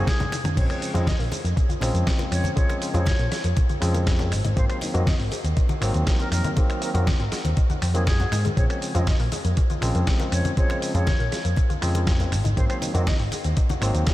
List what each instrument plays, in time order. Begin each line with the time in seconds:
0.07 flute G#4, kick, snare, closed hi-hat, high tom, shaker
0.19 muted clean electric guitar stroke, closed hi-hat, high tom, low conga, shaker
0.32 finger snap, open hi-hat, muted conga, shaker
0.44 muted clean electric guitar stroke, closed hi-hat, mid tom, high conga, shaker
0.56 picked electric bass A#1, tine electric piano C#3 F3 G#3 C4, synth arpeggio sound G#3, flute C#5, kick, closed hi-hat, crash, shaker
0.69 synth arpeggio sound A#3, flute C#5, finger snap, closed hi-hat, shaker
0.82 synth arpeggio sound C#4, open hi-hat, shaker
0.94 picked electric bass F2, tine electric piano C#3 F3 G#3 C4, synth arpeggio sound F4, flute D#5, closed hi-hat, muted conga, low conga, shaker
1.06 synth arpeggio sound C#4, flute D#5, kick, snare, closed hi-hat, high conga, shaker
1.19 picked electric bass A#1, synth arpeggio sound A#3, open hi-hat
1.32 synth arpeggio sound G#3, open hi-hat, muted conga, shaker
1.44 picked electric bass F2, synth arpeggio sound A#3, closed hi-hat, shaker
1.56 synth arpeggio sound C#4, kick, closed hi-hat, shaker
1.69 synth arpeggio sound F4, closed hi-hat, high conga, shaker
1.80 picked electric bass A#1, tine electric piano C#3 F3 G#3 C4, synth arpeggio sound A#4, finger snap, open hi-hat, muted conga, shaker
1.94 picked electric bass F2, synth arpeggio sound A#3, closed hi-hat, shaker
2.06 synth arpeggio sound G#3, kick, snare, closed hi-hat, shaker
2.19 synth arpeggio sound A#3, closed hi-hat, muted conga, shaker
2.31 picked electric bass F2, synth arpeggio sound C#4, flute C#5, finger snap, open hi-hat, shaker
2.44 synth arpeggio sound C#4, closed hi-hat, high conga, low conga, shaker
2.56 tine electric piano C#3 F3 G#3 C4, synth arpeggio sound G#3, flute C#5, kick, closed hi-hat, shaker
2.69 synth arpeggio sound A#3, finger snap, closed hi-hat, muted conga, shaker
2.81 synth arpeggio sound C#4, open hi-hat, shaker
2.94 picked electric bass F2, tine electric piano C#3 F3 G#3 C4, synth arpeggio sound F4, flute C#5, closed hi-hat, low conga, shaker
3.06 synth arpeggio sound C#4, kick, snare, closed hi-hat, muted conga, high conga, shaker
3.19 picked electric bass A#1, synth arpeggio sound A#3, closed hi-hat
3.31 synth arpeggio sound G#3, snare, open hi-hat, shaker
3.44 picked electric bass F2, synth arpeggio sound A#3, closed hi-hat, shaker
3.56 synth arpeggio sound C#4, kick, closed hi-hat, muted conga, shaker
3.69 synth arpeggio sound F4, muted picked electric bass stroke, closed hi-hat, high conga, shaker
3.81 picked electric bass F2, tine electric piano C#3 F3 G#3 C4, synth arpeggio sound A#4, finger snap, open hi-hat, shaker
3.94 synth arpeggio sound A#3, closed hi-hat, muted conga, shaker
4.07 synth arpeggio sound G#3, kick, snare, closed hi-hat, shaker
4.19 synth arpeggio sound A#3, closed hi-hat, low conga, shaker
4.32 picked electric bass G#1, synth arpeggio sound D#4, finger snap, open hi-hat, shaker
4.44 picked electric bass G#1, synth arpeggio sound D#4, closed hi-hat, muted conga, high conga, shaker
4.56 picked electric bass G#1, tine electric piano D#3 F#3 A#3 C4, synth arpeggio sound G#3, flute C5, kick, closed hi-hat, shaker
4.69 synth arpeggio sound C4, flute C5, finger snap, closed hi-hat, shaker
4.81 synth arpeggio sound D#4, open hi-hat, muted conga, shaker
4.94 picked electric bass F2, tine electric piano D#3 F#3 A#3 C4, synth arpeggio sound F#4, flute D#5, closed hi-hat, low conga, shaker
5.07 synth arpeggio sound D#4, flute D#5, kick, snare, closed hi-hat, high conga, shaker
5.19 picked electric bass G#1, synth arpeggio sound C4, open hi-hat
5.31 synth arpeggio sound G#3, muted picked electric bass stroke, open hi-hat, muted conga, shaker
5.44 picked electric bass D#2, synth arpeggio sound C4, closed hi-hat, shaker
5.57 synth arpeggio sound D#4, kick, closed hi-hat, shaker
5.69 synth arpeggio sound F#4, closed hi-hat, muted conga, high conga, shaker
5.81 picked electric bass G#1, tine electric piano D#3 F#3 A#3 C4, synth arpeggio sound C5, finger snap, open hi-hat, shaker
5.94 picked electric bass D#2, synth arpeggio sound C4, closed hi-hat, shaker
6.07 synth arpeggio sound G#3, kick, snare, closed hi-hat, shaker
6.19 synth arpeggio sound C4, flute A#4, closed hi-hat, muted conga, shaker
6.31 picked electric bass F2, synth arpeggio sound D#4, flute A#4, finger snap, open hi-hat, shaker
6.44 synth arpeggio sound D#4, closed hi-hat, high conga, low conga, shaker
6.57 tine electric piano D#3 F#3 A#3 C4, synth arpeggio sound G#3, kick, closed hi-hat, muted conga, shaker
6.69 synth arpeggio sound C4, finger snap, closed hi-hat, shaker
6.81 synth arpeggio sound D#4, flute A#4, open hi-hat, shaker
6.94 picked electric bass F2, tine electric piano D#3 F#3 A#3 C4, synth arpeggio sound F#4, flute A#4, closed hi-hat, low conga, shaker
7.07 synth arpeggio sound D#4, kick, snare, closed hi-hat, muted conga, high conga, shaker
7.19 picked electric bass G#1, synth arpeggio sound C4, closed hi-hat
7.32 synth arpeggio sound G#3, muted picked electric bass stroke, snare, open hi-hat, shaker
7.45 picked electric bass D#2, synth arpeggio sound C4, closed hi-hat, muted conga, shaker
7.57 synth arpeggio sound D#4, kick, closed hi-hat, shaker
7.70 synth arpeggio sound F#4, muted picked electric bass stroke, closed hi-hat, high conga, shaker
7.82 picked electric bass F2, synth arpeggio sound C4, finger snap, open hi-hat, shaker
7.94 tine electric piano D#3 F#3 A#3 C4, synth arpeggio sound G#3, flute G#4, closed hi-hat, muted conga, shaker
8.06 picked electric bass F#2, synth arpeggio sound D#4, flute G#4, kick, snare, closed hi-hat, shaker
8.20 synth arpeggio sound F#4, closed hi-hat, low conga, shaker
8.32 picked electric bass G#2, synth arpeggio sound D#4, finger snap, open hi-hat, muted conga, shaker
8.44 synth arpeggio sound G#3, closed hi-hat, high conga, shaker
8.57 picked electric bass A#1, tine electric piano C#3 F3 G#3 C4, synth arpeggio sound G#3, flute C#5, kick, closed hi-hat, shaker
8.70 synth arpeggio sound A#3, flute C#5, finger snap, closed hi-hat, shaker
8.82 synth arpeggio sound C#4, open hi-hat, shaker
8.94 picked electric bass F2, tine electric piano C#3 F3 G#3 C4, synth arpeggio sound F4, flute D#5, closed hi-hat, muted conga, low conga, shaker
9.07 synth arpeggio sound C#4, flute D#5, kick, snare, closed hi-hat, high conga, shaker
9.20 picked electric bass A#1, synth arpeggio sound A#3, open hi-hat
9.32 synth arpeggio sound G#3, muted picked electric bass stroke, open hi-hat, muted conga, shaker
9.45 picked electric bass F2, synth arpeggio sound A#3, closed hi-hat, shaker
9.57 synth arpeggio sound C#4, kick, closed hi-hat, shaker
9.70 synth arpeggio sound F4, closed hi-hat, high conga, shaker
9.81 picked electric bass A#1, tine electric piano C#3 F3 G#3 C4, synth arpeggio sound A#4, finger snap, open hi-hat, muted conga, shaker
9.95 picked electric bass F2, synth arpeggio sound A#3, closed hi-hat, shaker
10.07 synth arpeggio sound G#3, kick, snare, closed hi-hat, shaker
10.20 synth arpeggio sound A#3, closed hi-hat, muted conga, shaker
10.32 picked electric bass F2, synth arpeggio sound C#4, flute C#5, finger snap, open hi-hat, shaker
10.45 synth arpeggio sound C#4, closed hi-hat, high conga, low conga, shaker
10.57 tine electric piano C#3 F3 G#3 C4, synth arpeggio sound G#3, flute C#5, kick, closed hi-hat, shaker
10.70 synth arpeggio sound A#3, finger snap, closed hi-hat, muted conga, shaker
10.82 synth arpeggio sound C#4, open hi-hat, shaker
10.94 picked electric bass F2, tine electric piano C#3 F3 G#3 C4, synth arpeggio sound F4, flute C#5, closed hi-hat, low conga, shaker
11.07 synth arpeggio sound C#4, kick, snare, closed hi-hat, muted conga, high conga, shaker
11.20 picked electric bass A#1, synth arpeggio sound A#3, closed hi-hat
11.32 synth arpeggio sound G#3, snare, open hi-hat, shaker
11.44 picked electric bass F2, synth arpeggio sound A#3, closed hi-hat, shaker
11.56 synth arpeggio sound C#4, kick, closed hi-hat, muted conga, shaker
11.70 synth arpeggio sound F4, muted picked electric bass stroke, closed hi-hat, high conga, shaker
11.81 picked electric bass F2, tine electric piano C#3 F3 G#3 C4, synth arpeggio sound A#4, finger snap, open hi-hat, shaker
11.95 synth arpeggio sound A#3, closed hi-hat, muted conga, shaker
12.07 synth arpeggio sound G#3, kick, snare, closed hi-hat, shaker
12.19 synth arpeggio sound A#3, closed hi-hat, low conga, shaker
12.32 picked electric bass G#1, synth arpeggio sound D#4, finger snap, open hi-hat, shaker
12.44 picked electric bass G#1, synth arpeggio sound D#4, closed hi-hat, muted conga, high conga, shaker
12.57 picked electric bass G#1, tine electric piano D#3 F#3 A#3 C4, synth arpeggio sound G#3, flute C5, kick, closed hi-hat, shaker
12.69 synth arpeggio sound C4, flute C5, finger snap, closed hi-hat, shaker
12.82 synth arpeggio sound D#4, open hi-hat, muted conga, shaker
12.94 picked electric bass F2, tine electric piano D#3 F#3 A#3 C4, synth arpeggio sound F#4, flute D#5, closed hi-hat, low conga, shaker
13.06 synth arpeggio sound D#4, flute D#5, kick, snare, closed hi-hat, high conga, shaker
13.19 picked electric bass G#1, synth arpeggio sound C4, open hi-hat
13.32 synth arpeggio sound G#3, muted picked electric bass stroke, open hi-hat, muted conga, shaker
13.44 picked electric bass D#2, synth arpeggio sound C4, closed hi-hat, shaker
13.57 synth arpeggio sound D#4, kick, closed hi-hat, shaker
13.69 synth arpeggio sound F#4, closed hi-hat, muted conga, high conga, shaker
13.80 picked electric bass G#1, tine electric piano D#3 F#3 A#3 C4, synth arpeggio sound C5, finger snap, open hi-hat, shaker
13.94 picked electric bass D#2, synth arpeggio sound C4, closed hi-hat, shaker
14.07 synth arpeggio sound G#3, kick, snare, closed hi-hat, shaker